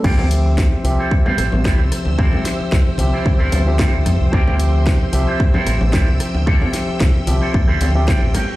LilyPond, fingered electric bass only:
\new Staff \with { instrumentName = "Fingered electric bass" } { \clef bass \time 4/4 \key d \minor \tempo 4 = 112 d,4 c,16 r16 c,16 r8. a,,16 a,,16 r16 c,16 r16 d,16 | r4 c,16 r16 c,16 r16 d,16 d,16 d,8. d,16 f,16 c,16 | d,4 c,16 r16 c,16 r8. a,,16 a,,16 r16 c,16 r16 d,16 | r4 c,16 r16 c,16 r16 d,16 d,16 d,8. a,,16 r8 | }